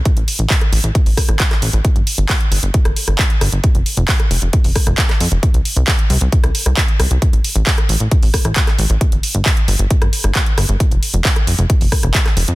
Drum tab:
HH |xxoxoxoxxooxxxox|xxoxoxoxxxoxxxox|xxoxoxoxxooxxxox|xxoxoxoxxxoxxxox|
CP |----x-------xx--|----x-------x---|----x-------xx--|----x-------x---|
SD |-----r----rr-r--|---------r-r--r-|-----r----rr-r--|---------r-r--r-|
BD |o---o---o-o-o---|o---o---o---o---|o---o---o-o-o---|o---o---o---o---|

HH |xxoxoxoxxooxxxox|xxoxoxoxxxoxxxox|xxoxoxoxxooxxxox|
CP |----x-------xx--|----x-------x---|----x-------xx--|
SD |-----r----rr-r--|---------r-r--r-|-----r----rr-r--|
BD |o---o---o-o-o---|o---o---o---o---|o---o---o-o-o---|